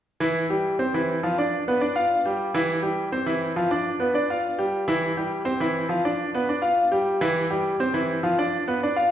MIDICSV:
0, 0, Header, 1, 2, 480
1, 0, Start_track
1, 0, Key_signature, 0, "major"
1, 0, Tempo, 291687
1, 105, Time_signature, 4, 2, 24, 8
1, 14996, End_track
2, 0, Start_track
2, 0, Title_t, "Grand piano"
2, 0, Program_c, 0, 0
2, 334, Note_on_c, 0, 52, 83
2, 344, Note_on_c, 0, 64, 75
2, 733, Note_off_c, 0, 52, 0
2, 738, Note_off_c, 0, 64, 0
2, 824, Note_on_c, 0, 55, 65
2, 824, Note_on_c, 0, 67, 60
2, 1219, Note_off_c, 0, 55, 0
2, 1219, Note_off_c, 0, 67, 0
2, 1301, Note_on_c, 0, 60, 64
2, 1303, Note_on_c, 0, 72, 62
2, 1500, Note_off_c, 0, 60, 0
2, 1502, Note_off_c, 0, 72, 0
2, 1549, Note_on_c, 0, 52, 70
2, 1553, Note_on_c, 0, 64, 66
2, 1942, Note_off_c, 0, 52, 0
2, 1945, Note_off_c, 0, 64, 0
2, 2029, Note_on_c, 0, 53, 69
2, 2035, Note_on_c, 0, 65, 68
2, 2225, Note_off_c, 0, 53, 0
2, 2229, Note_off_c, 0, 65, 0
2, 2278, Note_on_c, 0, 62, 71
2, 2278, Note_on_c, 0, 74, 68
2, 2667, Note_off_c, 0, 74, 0
2, 2668, Note_off_c, 0, 62, 0
2, 2763, Note_on_c, 0, 59, 68
2, 2765, Note_on_c, 0, 71, 66
2, 2954, Note_off_c, 0, 59, 0
2, 2955, Note_off_c, 0, 71, 0
2, 2982, Note_on_c, 0, 74, 64
2, 2986, Note_on_c, 0, 62, 66
2, 3182, Note_off_c, 0, 74, 0
2, 3184, Note_off_c, 0, 62, 0
2, 3219, Note_on_c, 0, 65, 68
2, 3222, Note_on_c, 0, 77, 72
2, 3617, Note_off_c, 0, 65, 0
2, 3619, Note_off_c, 0, 77, 0
2, 3712, Note_on_c, 0, 67, 65
2, 3715, Note_on_c, 0, 55, 65
2, 4104, Note_off_c, 0, 67, 0
2, 4106, Note_off_c, 0, 55, 0
2, 4186, Note_on_c, 0, 52, 82
2, 4192, Note_on_c, 0, 64, 82
2, 4581, Note_off_c, 0, 52, 0
2, 4585, Note_off_c, 0, 64, 0
2, 4640, Note_on_c, 0, 55, 64
2, 4650, Note_on_c, 0, 67, 66
2, 5046, Note_off_c, 0, 55, 0
2, 5052, Note_off_c, 0, 67, 0
2, 5140, Note_on_c, 0, 60, 61
2, 5143, Note_on_c, 0, 72, 67
2, 5341, Note_off_c, 0, 60, 0
2, 5343, Note_off_c, 0, 72, 0
2, 5369, Note_on_c, 0, 52, 69
2, 5379, Note_on_c, 0, 64, 68
2, 5771, Note_off_c, 0, 52, 0
2, 5777, Note_off_c, 0, 64, 0
2, 5861, Note_on_c, 0, 53, 69
2, 5865, Note_on_c, 0, 65, 70
2, 6062, Note_off_c, 0, 53, 0
2, 6064, Note_off_c, 0, 65, 0
2, 6103, Note_on_c, 0, 74, 71
2, 6105, Note_on_c, 0, 62, 72
2, 6500, Note_off_c, 0, 74, 0
2, 6501, Note_off_c, 0, 62, 0
2, 6579, Note_on_c, 0, 71, 61
2, 6583, Note_on_c, 0, 59, 64
2, 6781, Note_off_c, 0, 71, 0
2, 6783, Note_off_c, 0, 59, 0
2, 6817, Note_on_c, 0, 62, 62
2, 6828, Note_on_c, 0, 74, 70
2, 7019, Note_off_c, 0, 62, 0
2, 7026, Note_off_c, 0, 74, 0
2, 7079, Note_on_c, 0, 65, 64
2, 7082, Note_on_c, 0, 77, 66
2, 7469, Note_off_c, 0, 65, 0
2, 7471, Note_off_c, 0, 77, 0
2, 7546, Note_on_c, 0, 67, 67
2, 7552, Note_on_c, 0, 55, 60
2, 7942, Note_off_c, 0, 67, 0
2, 7945, Note_off_c, 0, 55, 0
2, 8026, Note_on_c, 0, 52, 77
2, 8027, Note_on_c, 0, 64, 84
2, 8422, Note_off_c, 0, 52, 0
2, 8422, Note_off_c, 0, 64, 0
2, 8506, Note_on_c, 0, 55, 63
2, 8511, Note_on_c, 0, 67, 64
2, 8902, Note_off_c, 0, 55, 0
2, 8905, Note_off_c, 0, 67, 0
2, 8969, Note_on_c, 0, 72, 66
2, 8974, Note_on_c, 0, 60, 64
2, 9175, Note_off_c, 0, 72, 0
2, 9178, Note_off_c, 0, 60, 0
2, 9219, Note_on_c, 0, 52, 71
2, 9230, Note_on_c, 0, 64, 75
2, 9617, Note_off_c, 0, 52, 0
2, 9623, Note_off_c, 0, 64, 0
2, 9692, Note_on_c, 0, 53, 65
2, 9702, Note_on_c, 0, 65, 67
2, 9896, Note_off_c, 0, 53, 0
2, 9902, Note_off_c, 0, 65, 0
2, 9954, Note_on_c, 0, 74, 66
2, 9955, Note_on_c, 0, 62, 66
2, 10346, Note_off_c, 0, 74, 0
2, 10347, Note_off_c, 0, 62, 0
2, 10442, Note_on_c, 0, 59, 67
2, 10442, Note_on_c, 0, 71, 64
2, 10634, Note_off_c, 0, 59, 0
2, 10634, Note_off_c, 0, 71, 0
2, 10680, Note_on_c, 0, 62, 65
2, 10681, Note_on_c, 0, 74, 61
2, 10873, Note_off_c, 0, 62, 0
2, 10873, Note_off_c, 0, 74, 0
2, 10891, Note_on_c, 0, 65, 70
2, 10898, Note_on_c, 0, 77, 63
2, 11292, Note_off_c, 0, 65, 0
2, 11296, Note_off_c, 0, 77, 0
2, 11382, Note_on_c, 0, 67, 70
2, 11383, Note_on_c, 0, 55, 68
2, 11779, Note_off_c, 0, 55, 0
2, 11779, Note_off_c, 0, 67, 0
2, 11867, Note_on_c, 0, 52, 85
2, 11872, Note_on_c, 0, 64, 79
2, 12261, Note_off_c, 0, 52, 0
2, 12265, Note_off_c, 0, 64, 0
2, 12343, Note_on_c, 0, 55, 69
2, 12347, Note_on_c, 0, 67, 69
2, 12739, Note_off_c, 0, 55, 0
2, 12742, Note_off_c, 0, 67, 0
2, 12835, Note_on_c, 0, 60, 67
2, 12839, Note_on_c, 0, 72, 66
2, 13029, Note_off_c, 0, 60, 0
2, 13032, Note_off_c, 0, 72, 0
2, 13063, Note_on_c, 0, 52, 72
2, 13067, Note_on_c, 0, 64, 70
2, 13459, Note_off_c, 0, 52, 0
2, 13461, Note_off_c, 0, 64, 0
2, 13546, Note_on_c, 0, 53, 69
2, 13551, Note_on_c, 0, 65, 73
2, 13744, Note_off_c, 0, 53, 0
2, 13747, Note_off_c, 0, 65, 0
2, 13798, Note_on_c, 0, 62, 70
2, 13804, Note_on_c, 0, 74, 77
2, 14188, Note_off_c, 0, 62, 0
2, 14191, Note_off_c, 0, 74, 0
2, 14277, Note_on_c, 0, 59, 67
2, 14282, Note_on_c, 0, 71, 65
2, 14471, Note_off_c, 0, 59, 0
2, 14473, Note_off_c, 0, 71, 0
2, 14534, Note_on_c, 0, 62, 64
2, 14539, Note_on_c, 0, 74, 64
2, 14721, Note_off_c, 0, 62, 0
2, 14724, Note_off_c, 0, 74, 0
2, 14751, Note_on_c, 0, 65, 65
2, 14753, Note_on_c, 0, 77, 69
2, 14996, Note_off_c, 0, 65, 0
2, 14996, Note_off_c, 0, 77, 0
2, 14996, End_track
0, 0, End_of_file